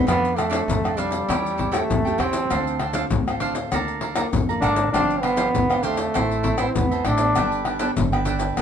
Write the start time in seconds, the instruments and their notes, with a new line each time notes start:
Already playing: nylon-string guitar C4 D4 A4
0.07 upright bass F2, nylon-string guitar F3, trombone B3, cavaquinho D4 A4 D5 F5, pandeiro, tamborim, maracas, surdo
0.25 pandeiro, maracas
0.36 trombone A3, cavaquinho D4 A4 D5 F5, pandeiro, tamborim, maracas
0.50 nylon-string guitar C4 D4 A4, cavaquinho D4 A4 D5 F5, pandeiro, maracas
0.68 upright bass F2, nylon-string guitar C3, pandeiro, maracas, surdo
0.83 nylon-string guitar C4 D4 A4, cavaquinho A4 D5 F5, pandeiro, tamborim, maracas
0.97 trombone G3, cavaquinho D4 A4 D5 F5, pandeiro, maracas
1.11 cavaquinho A4 D5 F5, pandeiro, maracas
1.28 upright bass E2, nylon-string guitar E3 A3 C#4 G4, cavaquinho E4 A4 C#5 G5, pandeiro, tamborim, maracas, surdo
1.46 pandeiro, maracas
1.58 cavaquinho E4 A4 C#5 G5, pandeiro, surdo
1.72 nylon-string guitar A3 C#4 G4, trombone A3, cavaquinho E4 A4 C#5 G5, pandeiro, tamborim, maracas
1.89 upright bass E2, nylon-string guitar E3, pandeiro, maracas, surdo
2.05 nylon-string guitar A3 C#4 G4, cavaquinho A4 C#5 G5, pandeiro, maracas
2.18 upright bass E2, trombone C4, cavaquinho E4 A4 C#5 G5, pandeiro, tamborim
2.33 pandeiro, maracas
2.50 upright bass D2, nylon-string guitar D3 A3 C4 F4, cavaquinho D4 A4 C5 F5, pandeiro, tamborim, maracas, surdo
2.67 pandeiro, maracas
2.79 cavaquinho D4 A4 C5 F5, pandeiro, tamborim
2.94 nylon-string guitar A3 C4 F4, cavaquinho D4 A4 C5 F5, pandeiro, maracas
3.11 upright bass D2, nylon-string guitar A2, pandeiro, maracas, surdo
3.27 nylon-string guitar A3 C4 F4, cavaquinho A4 C5 F5, pandeiro, tamborim, maracas
3.40 cavaquinho D4 A4 C5 F5, pandeiro
3.55 cavaquinho A4 C5 F5, pandeiro, maracas
3.72 upright bass D2, nylon-string guitar D3 A#3 F4 A4, cavaquinho A4 D5 F5 A#5, pandeiro, tamborim, maracas, surdo
3.88 pandeiro, maracas
4.01 cavaquinho A4 D5 F5 A#5, pandeiro
4.15 nylon-string guitar A#3 F4 A4, cavaquinho A4 D5 F5 A#5, pandeiro, tamborim, maracas
4.33 upright bass F2, nylon-string guitar D3, pandeiro, maracas, surdo
4.49 nylon-string guitar A#3 F4 A4, cavaquinho D5 F5 A#5, pandeiro, maracas
4.61 upright bass G#1, trombone D4, cavaquinho A4 D5 F5 A#5, pandeiro, tamborim, maracas
4.76 pandeiro, maracas
4.93 upright bass G1, nylon-string guitar G2 F3 C4 D4, trombone D4, cavaquinho D4 G4 C5 F5, pandeiro, tamborim, maracas, surdo
5.10 pandeiro, maracas
5.21 trombone B3, cavaquinho D4 G4 C5 F5, pandeiro, tamborim
5.36 nylon-string guitar F3 C4 D4, cavaquinho D4 G4 C5 F5, pandeiro, maracas
5.54 upright bass E2, nylon-string guitar D3, pandeiro, maracas, surdo
5.70 nylon-string guitar C4 D4, cavaquinho G4 C5 F5, pandeiro, tamborim, maracas
5.83 trombone A3, cavaquinho D4 G4 C5 F5, pandeiro, maracas
5.97 cavaquinho G4 C5 F5, pandeiro, maracas
6.14 upright bass A1, nylon-string guitar A2 E3 C4 E4, cavaquinho E4 A4 C5 E5, pandeiro, tamborim, maracas, surdo
6.31 pandeiro, maracas
6.43 cavaquinho E4 A4 C5 E5, pandeiro, surdo
6.58 nylon-string guitar E3 C4 E4, trombone B3, cavaquinho E4 A4 C5 E5, pandeiro, tamborim, maracas
6.67 trombone C4
6.75 upright bass E2, nylon-string guitar E3, trombone B3, pandeiro, maracas, surdo
6.91 nylon-string guitar E3 C4 E4, cavaquinho A4 C5 E5, pandeiro, maracas
7.05 upright bass A1, trombone D4, cavaquinho E4 A4 C5 E5, pandeiro, tamborim
7.18 nylon-string guitar B3 D4 A4, pandeiro, maracas
7.35 upright bass G1, nylon-string guitar G3, cavaquinho D4 A4 B4 G5, pandeiro, tamborim, maracas, surdo
7.52 pandeiro, maracas
7.65 cavaquinho D4 A4 B4 G5, pandeiro, tamborim
7.79 nylon-string guitar B3 D4 A4, cavaquinho D4 A4 B4 G5, pandeiro, maracas
7.97 upright bass G1, nylon-string guitar D3, pandeiro, maracas, surdo
8.12 nylon-string guitar B3 D4 A4, cavaquinho A4 B4 G5, pandeiro, tamborim, maracas
8.25 cavaquinho D4 A4 B4 G5, pandeiro, maracas
8.39 cavaquinho A4 B4 G5, pandeiro, maracas
8.57 cavaquinho D4 A4, pandeiro, tamborim, maracas, surdo